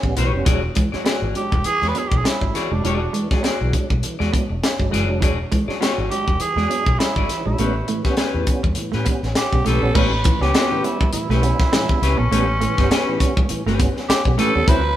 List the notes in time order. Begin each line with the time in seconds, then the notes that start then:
0.03 A1 G3 B3 C#4, muted clean electric guitar stroke, kick
0.17 B1 A2 E3 B3 G4 B4 C#5, snare, closed hi-hat
0.33 F1 G3 B3 C#4, muted clean electric guitar stroke
0.45 E1 E3 F#3 G#3 D4 F#4 G#4 D5, kick, closed hi-hat
0.64 muted clean electric guitar stroke
0.75 E3 G#3, muted clean electric guitar stroke, kick, closed hi-hat
0.92 F#3 G#3 D4 F#4 G#4 D5, muted fingered electric bass stroke, snare
1.05 G#3 B3 D4 F#4 G#4 D5, snare, closed hi-hat
1.22 G#1 E3
1.35 F#3 G#3 D4 G4, muted clean electric guitar stroke, closed hi-hat
1.52 E1 G3, muted clean electric guitar stroke, kick
1.64 E3 G#4, muted fingered electric bass stroke, muted clean electric guitar stroke, closed hi-hat
1.82 E2 G#3 F#4 G#4 D5, snare
1.88 B4
1.95 F#3 G#3 B3 D4 G#4, muted clean electric guitar stroke, closed hi-hat
2.08 B1 G#3 D4 G4, muted clean electric guitar stroke, kick
2.18 G#4
2.24 G3 E4, muted fingered electric bass stroke, muted clean electric guitar stroke, snare, closed hi-hat
2.41 G#1 F#3 G#3 D4, muted clean electric guitar stroke, kick
2.54 E3 F#4 G#4 D5, muted clean electric guitar stroke, snare, closed hi-hat
2.64 E4
2.71 F1 F#3 G#3 D4, muted clean electric guitar stroke
2.84 E1 E3 F#3 G#3 D4 F#4 G#4 D5, closed hi-hat
3.02 muted clean electric guitar stroke
3.13 E3 G#3, muted clean electric guitar stroke, closed hi-hat
3.31 F#3 G#3 D4 F#4 G#4 D5, muted fingered electric bass stroke, kick, snare
3.43 G#3 B3 D4 F#4 G#4 D5, snare, closed hi-hat
3.61 B1 E3
3.73 F#3 G#3 D4, muted clean electric guitar stroke, kick, closed hi-hat
3.90 B1 G3, muted clean electric guitar stroke, kick
4.03 E3, muted fingered electric bass stroke, muted clean electric guitar stroke, closed hi-hat
4.19 E2 G#3 F#4 G#4 D5, snare
4.33 F#3 G#3 B3 D4, muted clean electric guitar stroke, kick, closed hi-hat
4.49 E1 G#3 D4, muted clean electric guitar stroke
4.63 muted clean electric guitar stroke, snare, closed hi-hat
4.79 G1 F#3 G#3 D4, muted clean electric guitar stroke, kick
4.91 F#1 E3 G#3 F#4 G#4 D5, snare, closed hi-hat
5.08 F1 F#3 G#3 D4, muted clean electric guitar stroke
5.21 E1 E3 F#3 G#3 D4 F#4 G#4 D5, kick, closed hi-hat
5.39 muted clean electric guitar stroke
5.52 E3 G#3, muted clean electric guitar stroke, kick, closed hi-hat
5.68 F#3 G#3 D4 F#4 G#4 D5, muted fingered electric bass stroke, snare
5.81 G#3 B3 D4 F4 G4 C#5, snare, closed hi-hat
5.93 F#4 G#4 D5
5.97 G#1 E3
6.10 F#3 G#3 D4 G4, muted clean electric guitar stroke, closed hi-hat
6.27 E1 G3, muted clean electric guitar stroke, kick
6.39 E3 G#4, muted fingered electric bass stroke, muted clean electric guitar stroke, closed hi-hat
6.56 E2 G#3 F#4 G#4 D5, snare
6.69 F#3 G#3 B3 D4, muted clean electric guitar stroke, closed hi-hat
6.86 B1 G#3 D4, muted clean electric guitar stroke, kick
6.99 G3 E4, muted clean electric guitar stroke, snare, closed hi-hat
7.16 G#1 F#3 G#3 D4 F#4 G#4 D5, kick
7.29 E3, muted clean electric guitar stroke, snare, closed hi-hat
7.46 A#1 F#3 G#3 D4 E4, muted clean electric guitar stroke
7.58 A1 G3 A3 B3 C#4 G4 B4, closed hi-hat
7.76 muted clean electric guitar stroke
7.88 A2 E3 A3, muted clean electric guitar stroke, closed hi-hat
8.04 G3 B3 C#4 G4 B4, muted fingered electric bass stroke, kick, snare
8.17 B3 C#4 G4 B4, snare, closed hi-hat
8.34 E2 A2 E3
8.47 G3 B3 C#4, muted clean electric guitar stroke, kick, closed hi-hat
8.63 E2 G3, muted clean electric guitar stroke, kick
8.75 A2 E3, muted fingered electric bass stroke, muted clean electric guitar stroke, closed hi-hat
8.92 A2 A3 G4 B4, snare
8.96 C#4
9.05 G3 B3 C#4, muted clean electric guitar stroke, kick, closed hi-hat
9.23 A1 B3 C#4, muted clean electric guitar stroke, snare
9.35 G4, muted clean electric guitar stroke, snare, closed hi-hat
9.52 B1 G3 B3 C#4, muted clean electric guitar stroke, kick
9.65 B1 A2 E3 A3 C#4 G4 A4 B4, snare, closed hi-hat
9.82 A#1 G3 B3 C#4, muted clean electric guitar stroke
9.95 A1 G3 A3 B3 C#4 G4 B4, kick, crash
10.13 muted clean electric guitar stroke
10.24 A2 E3 C#4, muted clean electric guitar stroke, kick, closed hi-hat
10.40 C#2 G3 B3 C#4 G4 B4, snare
10.54 B3 C4 C#4 F#4 A#4, snare, closed hi-hat
10.67 C#4 G4 B4
10.71 A2 E3
10.84 G3 B3 C#4 E4, muted clean electric guitar stroke, closed hi-hat
11.01 G3, muted clean electric guitar stroke, kick
11.13 A2 E3 E4, muted fingered electric bass stroke, muted clean electric guitar stroke, closed hi-hat
11.29 B1 A3 C#4 G4 B4, snare
11.42 G3 B3 C#4, muted clean electric guitar stroke, closed hi-hat
11.60 B3 C#4, muted clean electric guitar stroke, kick, snare
11.72 A2 E3 G3, muted clean electric guitar stroke, snare, closed hi-hat
11.89 G3 B3 C#4, muted clean electric guitar stroke, kick
12.02 C#2 B3 C#4 G4 B4, muted clean electric guitar stroke, snare, closed hi-hat
12.18 A#1 B3 C#4, muted clean electric guitar stroke
12.31 A1 G3 A3 B3 C#4 G4 B4, closed hi-hat
12.48 muted clean electric guitar stroke
12.61 A2 E3 A3, muted clean electric guitar stroke, closed hi-hat
12.77 G1 G3 B3 C#4 G4 B4, kick, snare
12.91 B3 C#4 G4 B4, snare, closed hi-hat
13.08 A2 E3
13.20 G3 B3 C#4, muted clean electric guitar stroke, kick, closed hi-hat
13.37 G3, muted clean electric guitar stroke, kick
13.49 A2 E3, muted clean electric guitar stroke, muted fingered electric bass stroke, closed hi-hat
13.66 G1 A3 C#4 G4 B4, snare
13.79 G3 B3 C#4, muted clean electric guitar stroke, kick, closed hi-hat
13.96 B3 C#4, muted clean electric guitar stroke, snare
14.09 G4, muted clean electric guitar stroke, muted fingered electric bass stroke, snare, closed hi-hat
14.25 B1 G3 B3 C#4, muted clean electric guitar stroke, kick
14.38 A2 E3 A3 C#4 G4 A4 B4, snare, closed hi-hat
14.54 D#2 G3 B3 C#4, muted clean electric guitar stroke
14.67 D2 F#3 C4 E4 F#4 B4 C5, kick, closed hi-hat
14.83 muted clean electric guitar stroke